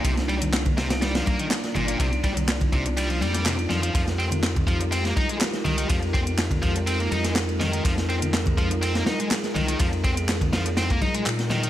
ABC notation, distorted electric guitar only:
X:1
M:4/4
L:1/16
Q:1/4=123
K:Fdor
V:1 name="Distorted electric guitar" clef=bass
C, z G, z3 C, z G, F, B, E, z2 B,, B,, | C, z G, z3 C, z G, F, G, G, C, z F, F, | F, z C z3 F, z C B, E A, z2 E, E, | F, z C z3 F, z C B, E A, z2 E, E, |
F, z C z3 F, z C B, E A, z2 E, E, | F, z C z3 F, z C B, E A, z2 E, E, |]